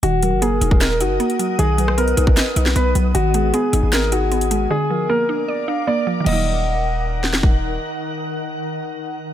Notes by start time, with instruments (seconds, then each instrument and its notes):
0.03 808-style bass D#1, synth pluck D#3, grand piano F#4, ambient pad A#4 D#5 F#5 D#6, closed hi-hat
0.22 synth pluck F#3, soft synth lead A#4, closed hi-hat
0.32 808-style bass F#1
0.42 synth pluck A#3, grand piano G#4, closed hi-hat
0.61 808-style bass D#1, synth pluck D#4, closed hi-hat
0.71 kick
0.81 grand piano A#4, synth pluck D#5, snare, closed hi-hat
1.00 808-style bass F#1, synth pluck D#4, grand piano F#4, closed hi-hat
1.20 synth pluck A#3, closed hi-hat
1.30 closed hi-hat
1.39 synth pluck F#3, closed hi-hat
1.59 808-style bass B1, synth pluck D#3, ambient pad B3, grand piano G#4, closed hi-hat
1.78 synth pluck F#3, soft synth lead B4, closed hi-hat
1.88 cross-stick
1.98 synth pluck B3, grand piano A#4, closed hi-hat
2.08 closed hi-hat
2.17 808-style bass B1, synth pluck D#4, closed hi-hat
2.27 kick
2.37 synth pluck D#5, snare, closed hi-hat
2.56 808-style bass B1, synth pluck D#4, closed hi-hat
2.66 snare
2.76 808-style bass B1, synth pluck B3, grand piano B4, closed hi-hat
2.95 808-style bass B1, synth pluck F#3, closed hi-hat
3.15 808-style bass G#1, synth pluck D#3, grand piano F#4, ambient pad G#5, closed hi-hat
3.34 synth pluck G#3, soft synth lead G#4, closed hi-hat
3.54 synth pluck B3, grand piano G#4, closed hi-hat
3.73 808-style bass G#1, synth pluck D#4, closed hi-hat
3.83 808-style bass G#1
3.93 grand piano A#4, synth pluck D#5, snare, closed hi-hat
4.12 synth pluck D#4, grand piano F#4, closed hi-hat
4.32 synth pluck B3, closed hi-hat
4.41 closed hi-hat
4.51 synth pluck G#3, closed hi-hat
4.70 synth pluck D3, grand piano G#4, ambient pad A#4 D5 F5 D6
4.90 synth pluck F3, soft synth lead A#4
5.09 synth pluck A#3, grand piano A#4
5.29 synth pluck D4
5.48 soft synth lead D5, synth pluck D5
5.68 synth pluck D4, soft synth lead F5
5.87 synth pluck A#3, grand piano D5
6.07 synth pluck F3
6.20 synth pluck D#3
6.24 808-style bass D#1, ambient pad D#3 D#4 A#4 F#5, synth pluck F#3 A#3, grand piano D#5, soft synth lead F#5, crash
6.32 synth pluck D#4
7.24 snare
7.33 snare
7.43 kick